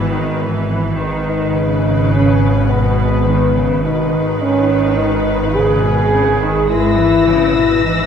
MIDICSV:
0, 0, Header, 1, 7, 480
1, 0, Start_track
1, 0, Key_signature, 5, "minor"
1, 0, Tempo, 571429
1, 823, Time_signature, 5, 2, 24, 8
1, 6772, End_track
2, 0, Start_track
2, 0, Title_t, "Violin section"
2, 0, Program_c, 0, 48
2, 5630, Note_on_c, 0, 94, 36
2, 5633, Note_on_c, 0, 88, 36
2, 6772, Note_off_c, 0, 88, 0
2, 6772, Note_off_c, 0, 94, 0
2, 6772, End_track
3, 0, Start_track
3, 0, Title_t, "Violin section"
3, 0, Program_c, 1, 48
3, 0, Note_on_c, 1, 71, 42
3, 793, Note_off_c, 1, 71, 0
3, 827, Note_on_c, 1, 71, 41
3, 3191, Note_off_c, 1, 71, 0
3, 3221, Note_on_c, 1, 71, 48
3, 5588, Note_off_c, 1, 71, 0
3, 5622, Note_on_c, 1, 71, 46
3, 6772, Note_off_c, 1, 71, 0
3, 6772, End_track
4, 0, Start_track
4, 0, Title_t, "French horn section"
4, 0, Program_c, 2, 60
4, 0, Note_on_c, 2, 59, 46
4, 822, Note_off_c, 2, 59, 0
4, 1064, Note_on_c, 2, 63, 60
4, 1750, Note_off_c, 2, 63, 0
4, 1787, Note_on_c, 2, 61, 60
4, 2262, Note_on_c, 2, 59, 70
4, 2265, Note_off_c, 2, 61, 0
4, 3219, Note_on_c, 2, 63, 62
4, 3223, Note_off_c, 2, 59, 0
4, 3691, Note_off_c, 2, 63, 0
4, 3698, Note_on_c, 2, 61, 52
4, 4181, Note_off_c, 2, 61, 0
4, 4184, Note_on_c, 2, 63, 70
4, 4654, Note_off_c, 2, 63, 0
4, 4663, Note_on_c, 2, 68, 89
4, 5623, Note_off_c, 2, 68, 0
4, 5626, Note_on_c, 2, 64, 64
4, 6565, Note_off_c, 2, 64, 0
4, 6581, Note_on_c, 2, 63, 57
4, 6772, Note_off_c, 2, 63, 0
4, 6772, End_track
5, 0, Start_track
5, 0, Title_t, "Cello section"
5, 0, Program_c, 3, 48
5, 0, Note_on_c, 3, 52, 49
5, 97, Note_off_c, 3, 52, 0
5, 104, Note_on_c, 3, 51, 43
5, 344, Note_off_c, 3, 51, 0
5, 344, Note_on_c, 3, 52, 49
5, 823, Note_off_c, 3, 52, 0
5, 825, Note_on_c, 3, 51, 43
5, 1304, Note_off_c, 3, 51, 0
5, 1305, Note_on_c, 3, 49, 46
5, 2264, Note_off_c, 3, 49, 0
5, 2264, Note_on_c, 3, 47, 52
5, 2744, Note_off_c, 3, 47, 0
5, 2744, Note_on_c, 3, 51, 45
5, 2984, Note_off_c, 3, 51, 0
5, 2986, Note_on_c, 3, 49, 46
5, 3220, Note_off_c, 3, 49, 0
5, 3227, Note_on_c, 3, 47, 42
5, 3464, Note_on_c, 3, 51, 47
5, 3465, Note_off_c, 3, 47, 0
5, 4664, Note_off_c, 3, 51, 0
5, 4666, Note_on_c, 3, 49, 47
5, 4905, Note_off_c, 3, 49, 0
5, 4907, Note_on_c, 3, 47, 45
5, 5145, Note_off_c, 3, 47, 0
5, 5145, Note_on_c, 3, 49, 46
5, 5384, Note_off_c, 3, 49, 0
5, 5385, Note_on_c, 3, 51, 50
5, 5624, Note_off_c, 3, 51, 0
5, 5625, Note_on_c, 3, 56, 51
5, 5859, Note_off_c, 3, 56, 0
5, 5864, Note_on_c, 3, 52, 49
5, 6104, Note_off_c, 3, 52, 0
5, 6109, Note_on_c, 3, 49, 49
5, 6345, Note_on_c, 3, 47, 38
5, 6346, Note_off_c, 3, 49, 0
5, 6583, Note_on_c, 3, 52, 45
5, 6584, Note_off_c, 3, 47, 0
5, 6772, Note_off_c, 3, 52, 0
5, 6772, End_track
6, 0, Start_track
6, 0, Title_t, "Double bass section"
6, 0, Program_c, 4, 48
6, 0, Note_on_c, 4, 32, 37
6, 789, Note_off_c, 4, 32, 0
6, 823, Note_on_c, 4, 32, 48
6, 3189, Note_off_c, 4, 32, 0
6, 3220, Note_on_c, 4, 32, 45
6, 5588, Note_off_c, 4, 32, 0
6, 5621, Note_on_c, 4, 32, 46
6, 6772, Note_off_c, 4, 32, 0
6, 6772, End_track
7, 0, Start_track
7, 0, Title_t, "Synth drone"
7, 0, Program_c, 5, 95
7, 0, Note_on_c, 5, 32, 60
7, 796, Note_off_c, 5, 32, 0
7, 815, Note_on_c, 5, 32, 55
7, 3185, Note_off_c, 5, 32, 0
7, 3224, Note_on_c, 5, 32, 57
7, 5590, Note_off_c, 5, 32, 0
7, 5640, Note_on_c, 5, 32, 59
7, 6772, Note_off_c, 5, 32, 0
7, 6772, End_track
0, 0, End_of_file